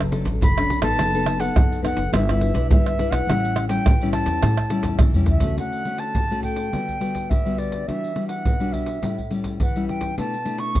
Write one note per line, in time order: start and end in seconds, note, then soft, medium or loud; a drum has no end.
0.00 0.21 F#1 loud
0.00 0.39 F#3 medium
0.00 pandeiro soft
0.00 tamborim medium
0.00 maracas soft
0.00 surdo soft
0.11 0.39 C#4 medium
0.11 0.39 D4 soft
0.11 0.39 A4 medium
0.11 pandeiro medium
0.25 0.38 A1 medium
0.25 pandeiro medium
0.25 maracas medium
0.25 surdo soft
0.41 0.66 F#1 medium
0.41 0.96 F#3 medium
0.41 0.82 B5 loud
0.41 pandeiro medium
0.41 maracas medium
0.41 surdo medium
0.57 0.81 C#4 medium
0.57 0.81 D4 medium
0.57 0.81 A4 medium
0.57 pandeiro soft
0.57 tamborim medium
0.57 maracas soft
0.70 pandeiro medium
0.70 surdo soft
0.81 0.95 A1 medium
0.81 1.13 B3 medium
0.81 1.13 D#4 medium
0.81 1.13 A4 medium
0.81 1.42 A5 loud
0.81 pandeiro medium
0.81 tamborim medium
0.81 maracas medium
0.81 surdo soft
0.98 1.47 F#1 medium
0.98 1.53 F#3 medium
0.98 pandeiro medium
0.98 tamborim medium
0.98 maracas medium
0.98 surdo medium
1.14 1.38 B3 medium
1.14 1.38 D#4 medium
1.14 1.38 A4 medium
1.14 pandeiro soft
1.14 maracas soft
1.26 pandeiro medium
1.26 tamborim medium
1.40 1.79 B3 soft
1.40 1.79 D#4 soft
1.40 1.80 A4 medium
1.40 1.84 F#5 medium
1.40 pandeiro medium
1.40 maracas medium
1.56 1.93 F#2 medium
1.56 2.11 F#3 medium
1.56 pandeiro medium
1.56 tamborim medium
1.56 maracas medium
1.56 surdo loud
1.72 pandeiro soft
1.72 maracas soft
1.82 2.02 B3 medium
1.82 2.03 D#4 medium
1.82 2.03 A4 medium
1.82 2.12 F#5 medium
1.82 pandeiro medium
1.82 tamborim medium
1.82 maracas medium
1.82 surdo soft
1.96 2.10 F#1 medium
1.96 pandeiro medium
1.96 maracas medium
2.13 2.50 G1 loud
2.13 2.68 G3 medium
2.13 2.22 D4 medium
2.13 2.22 E4 medium
2.13 2.23 B4 medium
2.13 2.67 E5 medium
2.13 pandeiro medium
2.13 tamborim medium
2.13 maracas medium
2.13 surdo medium
2.29 2.53 D4 medium
2.29 2.53 E4 medium
2.29 2.53 B4 medium
2.29 pandeiro soft
2.29 tamborim medium
2.29 maracas soft
2.29 surdo soft
2.41 pandeiro medium
2.54 2.67 B1 medium
2.54 2.94 D4 medium
2.54 2.94 E4 medium
2.54 2.94 B4 medium
2.54 pandeiro medium
2.54 maracas medium
2.54 surdo soft
2.70 2.95 G1 medium
2.70 3.26 G3 medium
2.70 3.12 E5 medium
2.70 pandeiro medium
2.70 maracas medium
2.70 surdo loud
2.86 pandeiro soft
2.86 tamborim medium
2.86 maracas soft
2.99 3.26 D4 medium
2.99 3.26 E4 medium
2.99 3.26 B4 medium
2.99 pandeiro medium
2.99 surdo soft
3.11 3.24 B1 medium
3.11 3.68 F#5 loud
3.11 pandeiro medium
3.11 tamborim medium
3.11 maracas medium
3.11 surdo soft
3.27 3.76 A1 medium
3.27 3.83 A2 medium
3.27 3.67 G3 medium
3.27 3.67 C#4 medium
3.27 3.67 E4 medium
3.27 pandeiro medium
3.27 tamborim medium
3.27 maracas medium
3.27 surdo medium
3.45 pandeiro soft
3.45 maracas soft
3.56 pandeiro medium
3.56 tamborim medium
3.68 3.94 G3 soft
3.68 3.94 C#4 medium
3.68 3.95 E4 soft
3.68 4.10 G5 medium
3.68 pandeiro medium
3.68 maracas medium
3.85 4.22 A2 medium
3.85 4.40 E3 medium
3.85 pandeiro medium
3.85 tamborim medium
3.85 maracas medium
3.85 surdo loud
4.01 4.53 G3 medium
4.01 4.54 C#4 medium
4.01 4.54 E4 medium
4.01 pandeiro soft
4.01 maracas soft
4.13 4.95 A5 medium
4.13 pandeiro medium
4.13 tamborim medium
4.13 surdo soft
4.26 4.39 E2 medium
4.26 pandeiro medium
4.26 maracas medium
4.43 4.79 A2 loud
4.43 4.98 A2 soft
4.43 pandeiro medium
4.43 tamborim medium
4.43 maracas medium
4.43 surdo medium
4.57 pandeiro soft
4.57 tamborim medium
4.57 maracas soft
4.57 surdo soft
4.70 5.09 G3 medium
4.70 5.09 C#4 medium
4.70 5.10 E4 medium
4.70 pandeiro medium
4.83 4.97 E2 medium
4.83 pandeiro medium
4.83 maracas medium
4.83 surdo soft
4.99 5.26 B1 medium
4.99 5.55 E3 medium
4.99 pandeiro medium
4.99 tamborim medium
4.99 maracas medium
4.99 surdo loud
5.14 5.39 G3 medium
5.14 5.39 C#4 medium
5.14 5.39 E4 medium
5.14 surdo loud
5.14 pandeiro soft
5.14 maracas soft
5.26 5.54 C#2 medium
5.26 5.56 E5 medium
5.26 surdo medium
5.26 pandeiro medium
5.40 5.85 A3 medium
5.40 5.85 C#4 medium
5.40 5.85 F#4 medium
5.40 pandeiro medium
5.40 maracas medium
5.40 surdo medium
5.58 6.12 D3 soft
5.58 6.01 F#5 medium
5.58 pandeiro medium
5.58 surdo soft
5.73 pandeiro soft
5.85 6.25 A3 soft
5.85 6.24 C#4 soft
5.85 6.25 F#4 soft
5.85 pandeiro soft
5.98 6.43 A5 medium
5.98 pandeiro medium
6.15 6.70 A2 soft
6.15 pandeiro medium
6.15 surdo medium
6.30 6.68 A3 medium
6.30 6.69 C#4 medium
6.30 6.69 F#4 medium
6.30 pandeiro soft
6.43 7.31 G5 medium
6.43 pandeiro soft
6.43 surdo soft
6.56 pandeiro medium
6.73 7.27 D3 medium
6.73 6.97 G3 soft
6.73 6.97 B3 soft
6.73 6.97 F#4 soft
6.73 pandeiro medium
6.73 surdo medium
6.88 pandeiro soft
6.88 surdo soft
7.00 7.39 G3 soft
7.00 7.39 B3 soft
7.00 7.39 F#4 soft
7.00 pandeiro soft
7.15 pandeiro medium
7.15 surdo soft
7.30 7.85 D3 medium
7.30 7.60 E5 medium
7.30 pandeiro medium
7.30 surdo medium
7.45 7.83 G3 soft
7.45 7.83 B3 medium
7.45 7.84 F#4 soft
7.45 pandeiro soft
7.58 7.89 D5 medium
7.58 pandeiro soft
7.72 pandeiro medium
7.72 surdo soft
7.87 8.42 E3 soft
7.87 8.12 G3 soft
7.87 8.12 D4 soft
7.87 8.12 F#4 soft
7.87 8.28 E5 medium
7.87 pandeiro medium
7.87 surdo soft
8.04 pandeiro soft
8.15 8.54 G3 soft
8.15 8.54 D4 soft
8.15 8.54 F#4 soft
8.15 pandeiro soft
8.28 8.74 F#5 medium
8.28 pandeiro medium
8.45 9.00 B2 medium
8.45 pandeiro medium
8.45 surdo medium
8.60 8.98 G3 medium
8.60 8.98 D4 medium
8.60 8.99 F#4 medium
8.60 pandeiro soft
8.72 9.32 E5 medium
8.72 pandeiro soft
8.72 surdo soft
8.86 pandeiro medium
9.02 9.57 A2 medium
9.02 9.19 G3 soft
9.02 9.19 C#4 soft
9.02 9.19 E4 soft
9.02 pandeiro medium
9.02 surdo soft
9.19 pandeiro soft
9.19 surdo soft
9.30 9.58 G3 soft
9.30 9.58 C#4 soft
9.30 9.58 E4 soft
9.30 pandeiro soft
9.44 pandeiro medium
9.44 surdo soft
9.60 10.14 E3 medium
9.60 9.88 F#5 medium
9.60 pandeiro medium
9.60 surdo medium
9.75 10.14 G3 soft
9.75 10.14 C#4 soft
9.75 10.14 E4 medium
9.75 pandeiro soft
9.89 10.16 G5 medium
9.89 pandeiro soft
9.89 surdo soft
10.01 pandeiro medium
10.01 surdo soft
10.18 10.72 B2 medium
10.18 10.34 A3 soft
10.18 10.35 D4 medium
10.18 10.35 E4 medium
10.18 10.61 A5 medium
10.18 pandeiro medium
10.18 surdo soft
10.34 pandeiro soft
10.45 10.80 A3 soft
10.45 10.80 D4 soft
10.45 10.80 E4 soft
10.45 pandeiro soft
10.58 10.80 C#6 medium
10.58 pandeiro medium
10.75 10.80 F#3 medium
10.75 pandeiro medium
10.75 surdo medium